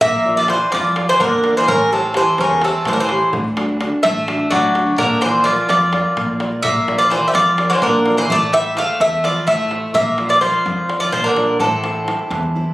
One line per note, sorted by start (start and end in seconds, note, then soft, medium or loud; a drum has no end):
0.01 0.52 A#1 medium
0.01 0.35 A#3 medium
0.01 0.48 A#3 medium
0.01 0.35 E5 loud
0.01 darbuka dum medium
0.25 0.48 F4 soft
0.25 0.49 A#4 soft
0.25 0.49 D5 medium
0.37 0.49 F3 medium
0.37 0.49 D5 medium
0.37 darbuka tek soft
0.48 0.72 E3 medium
0.48 0.87 F4 soft
0.48 0.88 A#4 soft
0.48 0.71 C5 medium
0.48 0.88 D5 medium
0.48 darbuka tek medium
0.72 1.06 F2 medium
0.72 1.19 F3 medium
0.72 1.07 F3 medium
0.72 1.06 D5 medium
0.72 darbuka tek medium
0.96 1.34 F4 soft
0.96 1.35 A#4 soft
0.96 1.35 D5 medium
0.96 darbuka tek medium
1.09 1.20 E3 medium
1.09 1.20 C5 medium
1.20 1.53 E2 medium
1.20 1.54 D3 medium
1.20 1.66 A#3 medium
1.20 1.53 A#4 medium
1.20 darbuka tek medium
1.20 darbuka dum medium
1.44 1.63 F4 soft
1.44 1.63 A#4 soft
1.44 1.63 D5 medium
1.44 darbuka tek medium
1.57 1.68 E3 medium
1.57 1.67 C5 medium
1.68 2.18 A1 medium
1.68 1.91 C#3 medium
1.68 2.14 A3 medium
1.68 1.90 A#4 medium
1.68 darbuka dum medium
1.91 2.14 C3 medium
1.91 2.14 G4 soft
1.91 2.14 A4 soft
1.91 2.16 A4 medium
1.91 2.14 C#5 medium
2.03 darbuka tek soft
2.14 2.38 E3 medium
2.14 2.53 G4 soft
2.14 2.53 A4 soft
2.14 2.38 C5 medium
2.14 2.53 C#5 medium
2.14 darbuka tek medium
2.38 2.72 E2 medium
2.38 2.61 C#3 medium
2.38 2.85 E3 medium
2.38 2.62 A#4 medium
2.38 darbuka tek medium
2.61 2.85 C3 medium
2.61 3.00 G4 soft
2.61 3.01 A4 soft
2.61 2.85 A4 medium
2.61 3.01 C#5 medium
2.61 darbuka tek medium
2.85 3.19 A1 medium
2.85 2.93 E3 medium
2.85 3.32 A3 medium
2.85 2.93 C5 medium
2.85 darbuka tek medium
2.85 darbuka dum medium
2.93 3.00 D3 medium
2.93 3.00 A#4 medium
3.00 3.31 E3 medium
3.00 3.31 C5 medium
3.09 3.29 G4 medium
3.09 3.29 A4 soft
3.09 3.29 C#5 medium
3.09 darbuka tek medium
3.33 3.83 D2 medium
3.33 3.79 D3 medium
3.33 darbuka dum medium
3.57 3.79 D4 soft
3.57 3.80 F#4 soft
3.57 3.80 A4 soft
3.57 darbuka tek medium
3.69 darbuka tek soft
3.81 4.18 D4 medium
3.81 4.19 F#4 medium
3.81 4.19 A4 medium
3.81 darbuka tek medium
4.03 4.38 A1 loud
4.03 4.48 A3 medium
4.03 4.50 A3 medium
4.03 4.47 E5 medium
4.03 darbuka tek medium
4.28 4.65 D4 medium
4.28 4.66 F#4 soft
4.28 4.66 A4 medium
4.28 darbuka tek medium
4.51 4.85 D2 medium
4.51 4.97 D3 medium
4.51 4.95 F#3 medium
4.51 4.99 D5 medium
4.51 darbuka tek medium
4.51 darbuka dum medium
4.75 4.94 D4 soft
4.75 4.94 F#4 soft
4.75 4.95 A4 medium
4.75 darbuka tek medium
4.98 5.48 A#1 medium
4.98 5.20 D3 medium
4.98 5.45 A#3 medium
4.98 5.20 A#4 medium
4.98 darbuka dum medium
5.10 darbuka tek soft
5.21 5.43 E3 medium
5.21 5.45 F4 soft
5.21 5.46 A#4 soft
5.21 5.46 C5 medium
5.21 5.46 D5 medium
5.21 darbuka tek medium
5.44 5.67 F3 medium
5.44 5.84 F4 medium
5.44 5.84 A#4 soft
5.44 5.69 D5 medium
5.44 5.84 D5 medium
5.44 darbuka tek medium
5.69 6.02 F2 medium
5.69 6.36 F3 medium
5.69 6.15 F3 medium
5.69 6.36 D5 medium
5.69 darbuka tek medium
5.93 6.31 F4 soft
5.93 6.31 A#4 soft
5.93 6.31 D5 medium
5.93 darbuka tek medium
6.16 6.50 A#1 medium
6.16 6.62 A#3 medium
6.16 darbuka tek medium
6.16 darbuka dum medium
6.28 darbuka tek soft
6.40 6.78 F4 soft
6.40 6.78 A#4 soft
6.40 6.78 D5 soft
6.40 darbuka tek medium
6.52 darbuka tek soft
6.62 7.14 A#1 medium
6.62 6.96 A#3 medium
6.62 7.10 A#3 medium
6.62 6.98 E5 loud
6.62 darbuka dum medium
6.87 7.10 F4 soft
6.87 7.11 A#4 soft
6.87 7.11 D5 soft
6.87 darbuka tek medium
6.98 7.10 F3 medium
6.98 7.10 D5 medium
6.98 darbuka tek soft
7.10 7.26 E3 medium
7.10 7.49 F4 soft
7.10 7.49 A#4 soft
7.10 7.27 C5 medium
7.10 7.50 D5 medium
7.10 darbuka tek medium
7.28 7.33 G3 medium
7.28 7.34 E5 medium
7.34 7.68 F2 loud
7.34 7.67 F3 medium
7.34 7.80 F3 medium
7.34 7.68 D5 medium
7.34 darbuka tek medium
7.58 7.96 F4 soft
7.58 7.97 A#4 soft
7.58 7.97 D5 medium
7.58 darbuka tek medium
7.70 7.81 E3 medium
7.70 7.81 C5 medium
7.82 8.15 A#1 medium
7.82 8.15 D3 medium
7.82 8.28 A#3 medium
7.82 8.18 A#4 medium
7.82 darbuka tek medium
7.82 darbuka dum medium
8.06 8.25 F4 soft
8.06 8.25 A#4 soft
8.06 8.26 D5 medium
8.06 darbuka tek medium
8.17 8.28 E3 medium
8.17 8.29 C5 medium
8.30 8.79 A1 medium
8.30 8.51 A3 medium
8.30 8.76 A3 medium
8.30 8.53 D5 loud
8.30 darbuka dum medium
8.53 8.75 G3 medium
8.53 8.77 E4 soft
8.53 8.77 A4 soft
8.53 8.77 C5 medium
8.53 8.75 E5 medium
8.53 darbuka tek medium
8.65 darbuka tek soft
8.77 8.98 A3 medium
8.77 9.15 E4 medium
8.77 9.15 A4 soft
8.77 9.15 C5 medium
8.77 9.01 F5 medium
8.77 darbuka tek medium
9.00 9.33 E2 loud
9.00 9.47 E3 medium
9.00 9.22 A3 medium
9.00 9.22 E5 medium
9.00 darbuka tek medium
9.24 9.46 F3 medium
9.24 9.62 E4 medium
9.24 9.62 A4 soft
9.24 9.62 C5 medium
9.24 9.46 D5 medium
9.24 darbuka tek medium
9.47 9.80 A1 medium
9.47 9.91 A3 medium
9.47 9.93 A3 medium
9.47 9.94 E5 medium
9.47 darbuka tek medium
9.47 darbuka dum medium
9.71 9.90 E4 soft
9.71 9.90 A4 soft
9.71 9.91 C5 medium
9.71 darbuka tek medium
9.94 10.45 A#1 loud
9.94 10.27 A#3 medium
9.94 10.41 A#3 medium
9.94 10.27 E5 loud
9.94 darbuka dum medium
10.18 10.41 F4 medium
10.18 10.41 A#4 soft
10.18 10.42 D5 medium
10.18 darbuka tek medium
10.29 10.40 F3 medium
10.29 10.41 D5 medium
10.29 darbuka tek soft
10.41 10.97 F3 medium
10.41 10.80 F4 soft
10.41 10.80 A#4 soft
10.41 10.96 C5 medium
10.41 10.80 D5 medium
10.41 darbuka tek medium
10.65 10.98 F2 loud
10.65 11.11 F3 medium
10.65 darbuka tek medium
10.89 11.27 F4 medium
10.89 11.27 A#4 soft
10.89 11.27 D5 medium
10.89 darbuka tek medium
11.00 11.12 F3 medium
11.00 11.11 D5 medium
11.12 11.45 A#1 medium
11.12 11.24 F3 medium
11.12 11.59 A#3 medium
11.12 11.23 C5 medium
11.12 darbuka tek medium
11.12 darbuka dum medium
11.24 11.58 D3 medium
11.24 11.60 A#4 medium
11.37 11.56 F4 soft
11.37 11.56 A#4 soft
11.37 11.56 D5 medium
11.37 darbuka tek medium
11.59 12.09 A1 loud
11.59 12.74 C3 medium
11.59 12.06 A3 medium
11.59 12.74 A4 medium
11.59 darbuka dum medium
11.72 darbuka tek soft
11.84 12.06 E4 soft
11.84 12.07 A4 soft
11.84 12.07 C5 soft
11.84 darbuka tek medium
11.96 darbuka tek soft
12.07 12.45 E4 soft
12.07 12.45 A4 soft
12.07 12.45 C5 medium
12.07 darbuka tek medium
12.19 darbuka tek soft
12.30 12.64 E2 loud
12.30 12.74 E3 medium
12.30 darbuka tek medium
12.43 darbuka tek soft
12.55 12.74 E4 soft
12.55 12.74 A4 soft
12.55 12.74 C5 medium